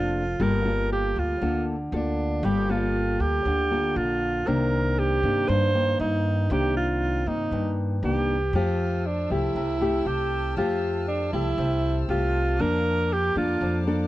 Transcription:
0.00 0.36 F1 medium
0.00 0.38 F3 medium
0.00 0.22 A#3 soft
0.00 0.23 D4 medium
0.00 0.43 F4 medium
0.00 0.23 A4 medium
0.40 1.12 G1 medium
0.40 1.39 G3 medium
0.40 0.61 A#3 medium
0.40 0.62 F4 medium
0.40 0.62 A4 medium
0.40 0.91 A#4 medium
0.65 1.37 A#3 medium
0.65 1.38 F4 medium
0.65 1.38 A4 medium
0.92 1.20 G4 medium
1.16 1.40 D2 medium
1.16 1.67 F4 medium
1.41 1.89 D2 medium
1.41 2.41 D3 medium
1.41 1.75 A#3 medium
1.41 1.75 F4 soft
1.41 1.75 A4 medium
1.92 2.40 D2 medium
1.92 2.65 A#3 soft
1.92 2.46 D4 medium
1.92 2.65 F4 medium
1.92 2.65 A4 medium
2.43 3.15 G1 loud
2.43 3.43 G3 medium
2.43 2.72 G4 medium
2.69 3.67 A#3 medium
2.69 3.67 F4 medium
2.69 3.22 F4 medium
2.69 3.67 A4 medium
3.20 3.43 D2 medium
3.20 3.98 G4 medium
3.45 3.92 D2 medium
3.45 4.45 D3 soft
3.71 4.43 A#3 medium
3.71 4.43 F4 medium
3.71 4.43 A4 medium
3.96 4.43 A#1 medium
3.96 4.49 F4 medium
4.47 5.19 C2 medium
4.47 5.46 C3 medium
4.47 5.19 D#3 medium
4.47 5.20 A#3 medium
4.47 5.20 D4 medium
4.47 5.00 A#4 medium
4.99 5.50 G4 loud
5.23 5.47 G2 medium
5.23 5.70 D#3 medium
5.23 5.71 A#3 soft
5.23 5.71 D4 medium
5.49 6.48 G2 medium
5.49 5.96 G2 medium
5.49 5.99 C5 loud
5.74 6.46 D#3 medium
5.74 6.47 A#3 medium
6.00 6.47 G2 loud
6.00 6.54 D#4 medium
6.50 7.22 C2 medium
6.50 7.50 C3 medium
6.50 7.23 D#3 medium
6.50 7.23 A#3 medium
6.50 7.23 D4 medium
6.50 6.76 G4 medium
6.77 7.29 F4 medium
7.26 7.50 G2 medium
7.26 7.99 D#3 soft
7.26 7.99 A#3 soft
7.26 7.77 D#4 medium
7.51 7.99 G2 medium
7.51 8.51 G2 medium
8.02 8.50 C2 medium
8.02 8.36 D#3 soft
8.02 8.36 A#3 medium
8.02 8.36 D4 medium
8.02 8.57 G4 medium
8.53 9.26 F2 medium
8.53 9.53 F3 medium
8.53 9.05 A3 medium
8.53 9.08 F4 medium
8.53 12.56 G4 medium
8.53 9.05 G4 medium
8.53 14.07 A5 medium
8.53 12.56 E6 medium
8.53 14.07 F6 medium
9.06 9.33 D4 medium
9.30 9.54 C2 medium
9.30 9.77 A3 medium
9.30 9.77 E4 soft
9.30 10.08 E4 medium
9.30 9.77 G4 medium
9.55 10.02 C2 medium
9.55 10.55 C3 soft
9.81 10.53 A3 medium
9.81 10.53 E4 medium
9.81 10.53 G4 medium
10.06 10.53 C2 medium
10.06 10.57 G4 loud
10.57 11.29 F2 medium
10.57 11.56 F3 medium
10.57 11.29 A3 medium
10.57 11.04 F4 medium
10.57 11.30 G4 medium
11.08 11.31 D4 medium
11.33 11.57 C2 medium
11.33 12.05 A3 soft
11.33 12.05 E4 medium
11.33 12.06 E4 medium
11.33 12.06 G4 medium
11.58 12.05 C2 medium
11.58 12.57 C3 medium
12.09 12.56 C2 medium
12.09 12.56 A3 medium
12.09 12.62 F4 medium
12.09 12.56 G4 medium
12.59 13.32 F2 medium
12.59 13.59 F3 medium
12.59 13.10 A#3 medium
12.59 14.07 A#3 medium
12.59 13.10 D4 medium
12.59 13.14 A#4 loud
12.59 14.07 D6 medium
13.12 13.37 G4 loud
13.35 13.59 F2 medium
13.35 13.83 A#3 soft
13.35 13.83 D4 medium
13.35 13.83 F4 medium
13.35 13.83 A4 medium
13.61 14.07 F2 medium
13.61 14.07 F3 soft
13.87 14.07 A#3 medium
13.87 14.07 D4 medium
13.87 14.07 A4 medium

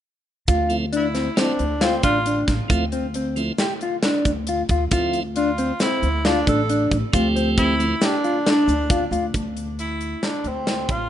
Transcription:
0.48 1.27 D2 medium
0.48 0.74 F4 medium
0.48 kick medium
0.48 closed hi-hat medium
0.48 shaker soft
0.69 0.85 F3 medium
0.69 0.86 A3 medium
0.69 0.86 C4 medium
0.69 0.86 E4 medium
0.69 closed hi-hat medium
0.93 1.06 D4 medium
0.93 1.41 E4 medium
0.93 closed hi-hat medium
1.15 1.28 C4 medium
1.15 snare soft
1.15 closed hi-hat medium
1.15 shaker soft
1.36 1.52 F3 medium
1.36 1.52 A3 soft
1.36 1.53 C4 medium
1.36 1.63 C4 medium
1.36 1.82 D4 medium
1.36 1.53 E4 medium
1.36 snare loud
1.36 closed hi-hat medium
1.36 shaker medium
1.59 1.99 D2 medium
1.59 closed hi-hat medium
1.81 2.03 C4 medium
1.81 1.94 F4 medium
1.81 snare loud
1.81 closed hi-hat medium
2.03 2.43 A1 medium
2.03 2.17 D4 medium
2.03 2.45 F4 medium
2.03 kick medium
2.03 closed hi-hat medium
2.03 shaker soft
2.26 2.52 D4 medium
2.26 closed hi-hat medium
2.48 2.58 A1 medium
2.48 kick medium
2.48 snare soft
2.48 closed hi-hat medium
2.48 shaker soft
2.68 3.49 D2 medium
2.68 2.85 F3 medium
2.68 2.85 A3 medium
2.68 2.86 C4 medium
2.68 2.86 E4 medium
2.68 2.83 F4 medium
2.68 kick medium
2.68 closed hi-hat medium
2.68 shaker soft
2.92 3.06 C4 medium
2.92 closed hi-hat medium
3.14 3.41 C4 medium
3.14 closed hi-hat medium
3.36 3.52 F3 medium
3.36 3.52 A3 medium
3.36 3.53 C4 medium
3.36 3.53 E4 medium
3.36 closed hi-hat medium
3.36 shaker soft
3.58 3.72 G4 medium
3.58 snare medium
3.58 closed hi-hat medium
3.58 shaker medium
3.81 3.95 F4 medium
3.81 closed hi-hat soft
4.03 4.30 D4 medium
4.03 snare loud
4.03 closed hi-hat medium
4.25 4.64 D2 medium
4.25 kick medium
4.25 closed hi-hat medium
4.25 shaker soft
4.47 4.61 F4 medium
4.47 closed hi-hat medium
4.69 4.89 D2 medium
4.69 4.83 F4 medium
4.69 kick medium
4.69 closed hi-hat medium
4.69 shaker soft
4.91 5.70 D2 medium
4.91 5.22 F3 medium
4.91 5.23 A3 medium
4.91 5.23 C4 medium
4.91 5.23 E4 medium
4.91 5.18 F4 medium
4.91 kick medium
4.91 closed hi-hat medium
4.91 shaker soft
5.13 closed hi-hat medium
5.36 5.49 D4 medium
5.36 5.77 F4 medium
5.36 closed hi-hat medium
5.58 5.71 C4 medium
5.58 closed hi-hat medium
5.58 shaker soft
5.80 6.07 C4 medium
5.80 6.27 E4 medium
5.80 snare medium
5.80 closed hi-hat medium
5.80 shaker medium
6.03 6.42 D2 medium
6.03 closed hi-hat soft
6.25 6.47 D4 loud
6.25 6.38 F4 medium
6.25 snare loud
6.25 closed hi-hat medium
6.47 6.86 A1 medium
6.47 6.60 D4 medium
6.47 6.89 A4 medium
6.47 kick medium
6.47 closed hi-hat medium
6.47 shaker soft
6.69 6.95 D4 medium
6.69 closed hi-hat medium
6.91 7.01 A1 medium
6.91 kick medium
6.91 closed hi-hat medium
6.91 shaker soft
7.13 7.92 D2 medium
7.13 7.75 F3 medium
7.13 7.75 A3 medium
7.13 7.75 C4 medium
7.13 7.27 F4 medium
7.13 7.76 G4 medium
7.13 kick loud
7.13 closed hi-hat medium
7.13 shaker medium
7.36 7.49 C4 medium
7.36 closed hi-hat medium
7.58 7.84 C4 medium
7.58 8.06 E4 loud
7.58 kick medium
7.58 closed hi-hat medium
7.79 7.95 F3 medium
7.79 7.95 A3 medium
7.79 7.96 C4 medium
7.79 7.95 E4 medium
7.79 closed hi-hat medium
7.79 shaker soft
8.02 8.47 D4 medium
8.02 8.15 G4 medium
8.02 snare loud
8.02 closed hi-hat medium
8.02 shaker medium
8.24 8.37 F4 medium
8.24 closed hi-hat soft
8.46 8.72 D4 medium
8.46 9.10 D4 medium
8.46 snare loud
8.46 closed hi-hat medium
8.46 shaker soft
8.67 9.07 D2 medium
8.67 closed hi-hat medium
8.67 shaker soft
8.90 9.03 F4 medium
8.90 kick loud
8.90 closed hi-hat medium
9.11 9.31 D2 medium
9.11 9.25 F4 medium
9.11 closed hi-hat medium
9.11 shaker soft
9.34 10.13 D2 medium
9.34 kick medium
9.34 closed hi-hat medium
9.57 closed hi-hat medium
9.79 10.26 E4 medium
9.79 closed hi-hat medium
10.01 closed hi-hat soft
10.23 10.49 D4 medium
10.23 snare medium
10.23 closed hi-hat medium
10.44 10.84 D2 medium
10.44 10.92 C4 medium
10.44 closed hi-hat soft
10.67 snare medium
10.67 closed hi-hat medium
10.89 11.09 A1 medium
10.89 11.09 F4 medium
10.89 kick medium
10.89 closed hi-hat medium

